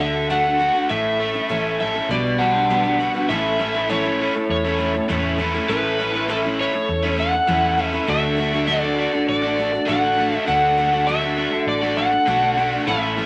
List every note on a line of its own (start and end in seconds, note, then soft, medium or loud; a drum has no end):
0.00 0.69 D2 loud
0.00 0.90 D3 medium
0.00 0.29 A3 medium
0.00 0.88 A3 medium
0.00 0.89 D4 medium
0.00 0.29 D4 medium
0.00 0.89 F#4 medium
0.00 0.30 F#4 medium
0.00 0.88 A4 medium
0.00 0.30 A4 medium
0.00 0.30 E5 medium
0.30 0.45 D3 medium
0.30 0.45 A3 medium
0.30 0.45 D4 medium
0.30 0.44 F#4 medium
0.30 0.43 A4 medium
0.30 0.90 F#5 medium
0.44 0.59 D4 soft
0.44 0.59 F#4 soft
0.44 0.60 A4 soft
0.59 0.75 A3 medium
0.59 0.75 D4 medium
0.59 0.74 F#4 medium
0.59 0.73 A4 medium
0.74 0.90 D4 soft
0.74 0.90 F#4 medium
0.74 0.90 A4 medium
0.89 1.39 A1 medium
0.89 1.35 A2 medium
0.89 1.35 E3 medium
0.89 2.08 A3 medium
0.89 1.34 A3 medium
0.89 2.09 C#4 medium
0.89 1.33 C#4 medium
0.89 2.08 E4 medium
0.89 1.33 E4 medium
0.89 2.08 A4 medium
0.89 1.32 A4 medium
0.89 1.76 E5 loud
1.20 2.10 A3 medium
1.33 1.48 A3 soft
1.33 1.48 C#4 soft
1.33 1.48 E4 soft
1.33 1.49 A4 soft
1.49 1.99 A1 medium
1.49 1.79 A2 medium
1.49 1.80 E3 medium
1.49 1.78 A3 medium
1.49 1.79 C#4 medium
1.49 1.79 E4 medium
1.49 1.80 A4 medium
1.79 1.95 A3 medium
1.79 1.95 C#4 medium
1.79 1.94 E4 medium
1.79 1.93 A4 medium
1.79 2.08 E5 medium
1.94 2.10 A3 soft
1.94 2.10 C#4 soft
1.94 2.10 E4 soft
1.94 2.10 A4 medium
2.08 3.07 B1 medium
2.08 2.40 B2 medium
2.08 3.28 G3 medium
2.08 2.40 G3 medium
2.08 3.28 B3 medium
2.08 2.38 B3 medium
2.08 3.28 D4 medium
2.08 2.39 D4 medium
2.08 3.28 F#4 medium
2.08 2.39 F#4 medium
2.08 2.40 B4 medium
2.08 2.96 D5 medium
2.38 3.30 G3 medium
2.38 2.55 B3 medium
2.38 2.55 D4 medium
2.38 2.53 F#4 medium
2.38 2.53 B4 medium
2.38 3.29 F#5 loud
2.54 2.69 B3 soft
2.54 2.69 D4 soft
2.54 2.70 F#4 soft
2.54 2.70 B4 soft
2.70 2.85 B2 medium
2.70 2.85 G3 medium
2.70 2.85 B3 medium
2.70 2.84 D4 medium
2.70 2.84 F#4 medium
2.70 2.83 B4 medium
2.84 2.98 B3 soft
2.84 2.99 D4 medium
2.84 3.00 F#4 medium
2.84 2.99 B4 medium
2.99 3.15 B3 medium
2.99 3.15 D4 medium
2.99 3.14 F#4 medium
2.99 3.13 B4 medium
3.14 3.30 B3 medium
3.14 3.30 D4 medium
3.14 3.30 F#4 medium
3.14 3.30 B4 medium
3.29 4.28 A1 loud
3.29 3.59 A2 medium
3.29 3.60 E3 medium
3.29 3.58 A3 medium
3.29 5.67 A3 medium
3.29 3.59 C#4 medium
3.29 5.67 C#4 medium
3.29 3.59 E4 medium
3.29 5.67 E4 medium
3.29 5.67 A4 medium
3.29 3.60 A4 medium
3.29 3.91 E5 loud
3.59 3.90 E3 medium
3.59 3.74 A3 medium
3.59 3.74 C#4 medium
3.59 3.74 E4 medium
3.59 3.73 A4 medium
3.74 3.88 A3 soft
3.74 3.89 C#4 soft
3.74 3.89 E4 soft
3.74 3.89 A4 medium
3.89 4.04 A2 medium
3.89 4.05 E3 medium
3.89 4.04 A3 medium
3.89 4.04 C#4 medium
3.89 4.03 E4 medium
3.89 4.02 A4 medium
3.89 4.50 C#5 medium
4.04 4.35 A3 soft
4.04 4.34 C#4 soft
4.04 4.34 E4 medium
4.04 4.33 A4 medium
4.20 4.36 E3 medium
4.20 4.36 A3 medium
4.20 4.35 C#4 medium
4.20 4.35 E4 medium
4.34 4.65 A3 soft
4.34 4.65 C#4 soft
4.34 4.64 E4 soft
4.34 4.63 A4 soft
4.34 muted overdriven electric guitar stroke soft
4.49 4.98 E2 medium
4.49 5.36 C#5 medium
4.64 4.77 A3 soft
4.64 4.78 C#4 medium
4.64 4.79 E4 medium
4.64 4.79 A4 medium
4.78 4.94 A3 medium
4.78 4.94 C#4 medium
4.78 4.93 E4 medium
4.78 4.92 A4 medium
4.93 5.08 A3 soft
4.93 5.09 C#4 soft
4.93 5.09 E4 soft
4.93 5.09 A4 medium
4.93 muted overdriven electric guitar stroke medium
5.09 5.58 E2 medium
5.09 5.39 A2 medium
5.09 5.39 E3 medium
5.09 5.37 A3 medium
5.09 5.38 C#4 medium
5.09 5.38 E4 medium
5.09 5.39 A4 medium
5.38 5.68 E3 medium
5.38 5.54 A3 medium
5.38 5.54 C#4 medium
5.38 5.54 E4 medium
5.38 5.53 A4 medium
5.54 5.68 A3 soft
5.54 5.69 C#4 soft
5.54 5.69 E4 soft
5.54 5.69 A4 medium
5.69 6.67 A1 medium
5.69 5.99 A2 medium
5.69 5.99 E3 medium
5.69 5.98 A3 medium
5.69 8.06 C#4 medium
5.69 5.99 C#4 medium
5.69 8.06 E4 medium
5.69 5.99 E4 medium
5.69 8.06 A4 medium
5.69 6.00 A4 medium
5.69 6.25 B4 loud
5.98 6.28 E3 medium
5.98 6.14 A3 medium
5.98 6.14 C#4 medium
5.98 6.14 E4 medium
5.98 6.13 A4 medium
6.14 6.28 A3 soft
6.14 6.29 C#4 soft
6.14 6.29 E4 medium
6.14 6.29 A4 soft
6.29 6.44 A2 medium
6.29 6.44 E3 medium
6.29 6.44 A3 medium
6.29 6.44 C#4 medium
6.29 6.44 E4 medium
6.29 6.43 A4 medium
6.29 6.39 A4 medium
6.44 6.74 A3 soft
6.44 6.74 C#4 soft
6.44 6.73 E4 soft
6.44 6.72 A4 medium
6.58 6.74 E3 medium
6.58 6.74 A3 medium
6.58 6.73 C#4 medium
6.58 6.73 E4 medium
6.58 7.16 C#5 loud
6.74 7.04 A3 soft
6.74 7.04 C#4 soft
6.74 7.02 E4 medium
6.74 7.02 A4 medium
6.74 muted overdriven electric guitar stroke soft
6.89 7.38 E2 loud
7.03 7.16 A3 soft
7.03 7.17 C#4 soft
7.03 7.18 E4 soft
7.03 7.18 A4 medium
7.17 7.33 A3 medium
7.17 7.33 C#4 medium
7.17 7.32 E4 medium
7.17 7.32 A4 medium
7.17 7.86 F#5 medium
7.33 7.47 A3 soft
7.33 7.47 C#4 soft
7.33 7.47 E4 soft
7.33 7.48 A4 medium
7.33 muted overdriven electric guitar stroke soft
7.47 7.98 E2 medium
7.47 7.78 A2 medium
7.47 7.78 E3 medium
7.47 7.76 A3 medium
7.47 7.77 C#4 medium
7.47 7.78 E4 medium
7.47 7.78 A4 medium
7.77 8.06 E3 medium
7.77 7.93 A3 medium
7.77 7.93 C#4 medium
7.77 7.92 E4 medium
7.77 7.91 A4 medium
7.86 8.09 E5 medium
7.92 8.06 A3 soft
7.92 8.08 C#4 soft
7.92 8.08 E4 soft
7.92 8.07 A4 medium
8.07 9.06 D2 medium
8.07 8.38 D3 medium
8.07 10.45 A3 medium
8.07 8.35 A3 medium
8.07 10.45 D4 medium
8.07 8.36 D4 medium
8.07 10.45 F#4 medium
8.07 8.37 F#4 medium
8.07 10.45 A4 medium
8.07 8.37 A4 medium
8.07 8.67 E5 loud
8.37 8.67 D3 medium
8.37 8.53 A3 medium
8.37 8.53 D4 medium
8.37 8.52 F#4 medium
8.37 8.51 A4 medium
8.52 8.69 A3 medium
8.52 8.67 D4 soft
8.52 8.67 F#4 soft
8.52 8.68 A4 medium
8.67 8.83 D3 medium
8.67 8.83 A3 medium
8.67 8.83 D4 medium
8.67 8.82 F#4 medium
8.67 8.81 A4 medium
8.67 9.28 D5 loud
8.83 9.14 D4 soft
8.83 9.13 F#4 soft
8.83 9.12 A4 medium
8.97 9.42 D3 medium
8.97 9.14 A3 medium
8.97 9.13 D4 medium
8.97 9.12 F#4 medium
9.13 9.44 D4 medium
9.13 9.43 F#4 soft
9.13 9.42 A4 medium
9.13 muted overdriven electric guitar stroke soft
9.29 9.77 A1 loud
9.29 9.90 D5 loud
9.43 9.73 A3 medium
9.43 9.58 D4 soft
9.43 9.58 F#4 soft
9.43 9.58 A4 medium
9.59 9.73 A3 medium
9.59 9.74 D4 medium
9.59 9.73 F#4 medium
9.59 9.72 A4 medium
9.72 9.88 D4 soft
9.72 9.88 F#4 medium
9.72 9.88 A4 medium
9.72 muted overdriven electric guitar stroke soft
9.88 10.37 A1 medium
9.88 10.18 D3 medium
9.88 10.17 A3 medium
9.88 10.18 D4 medium
9.88 10.18 F#4 medium
9.88 10.18 A4 medium
9.88 10.35 F#5 loud
10.17 10.45 D3 medium
10.17 10.33 A3 medium
10.17 10.33 D4 medium
10.17 10.32 F#4 medium
10.17 10.32 A4 medium
10.33 10.47 A3 medium
10.33 10.47 D4 soft
10.33 10.47 F#4 soft
10.33 10.48 A4 medium
10.33 10.47 E5 loud
10.47 11.46 D2 medium
10.47 10.78 D3 medium
10.47 10.76 A3 medium
10.47 12.85 A3 medium
10.47 10.77 D4 medium
10.47 12.85 D4 medium
10.47 12.85 F#4 medium
10.47 10.77 F#4 medium
10.47 12.85 A4 medium
10.47 10.78 A4 medium
10.47 11.10 F#5 loud
10.77 11.05 D3 medium
10.77 10.93 A3 medium
10.77 10.93 D4 medium
10.77 10.93 F#4 medium
10.77 10.92 A4 medium
10.93 11.06 A3 medium
10.93 11.08 D4 soft
10.93 11.08 F#4 soft
10.93 11.08 A4 soft
11.07 11.23 D3 medium
11.07 11.23 A3 medium
11.07 11.23 D4 medium
11.07 11.22 F#4 medium
11.07 11.21 A4 medium
11.07 11.68 E5 medium
11.22 11.52 D4 soft
11.22 11.52 F#4 medium
11.22 11.51 A4 medium
11.36 11.82 D3 medium
11.36 11.53 A3 medium
11.36 11.51 D4 medium
11.36 11.51 F#4 medium
11.52 11.83 D4 soft
11.52 11.81 F#4 soft
11.52 11.81 A4 medium
11.52 muted overdriven electric guitar stroke soft
11.67 12.16 A1 loud
11.67 11.96 D5 loud
11.82 12.12 A3 medium
11.82 11.96 D4 soft
11.82 11.97 F#4 soft
11.82 11.97 A4 medium
11.97 12.12 A3 medium
11.97 12.12 D4 medium
11.97 12.11 F#4 medium
11.97 12.10 A4 medium
11.97 12.83 F#5 loud
12.11 12.27 D4 soft
12.11 12.27 F#4 medium
12.11 12.27 A4 soft
12.11 muted overdriven electric guitar stroke soft
12.27 12.76 B1 medium
12.27 12.57 D3 medium
12.27 12.56 A3 medium
12.27 12.57 D4 medium
12.27 12.57 F#4 medium
12.27 12.58 A4 medium
12.56 12.85 D3 medium
12.56 12.72 A3 medium
12.56 12.73 D4 medium
12.56 12.72 F#4 medium
12.56 12.71 A4 medium
12.72 12.87 A3 medium
12.72 12.88 D4 soft
12.72 12.88 F#4 soft
12.72 12.87 A4 soft
12.86 13.26 A1 medium
12.86 13.17 A2 medium
12.86 13.17 E3 medium
12.86 13.26 A3 medium
12.86 13.16 A3 medium
12.86 13.26 C#4 medium
12.86 13.16 C#4 medium
12.86 13.26 E4 medium
12.86 13.17 E4 medium
12.86 13.26 A4 medium
12.86 13.18 A4 medium
12.86 13.26 A4 medium
12.86 13.26 E5 loud
13.16 13.26 E3 medium
13.16 13.26 A3 medium
13.16 13.26 C#4 medium
13.16 13.26 E4 medium
13.16 13.26 A4 medium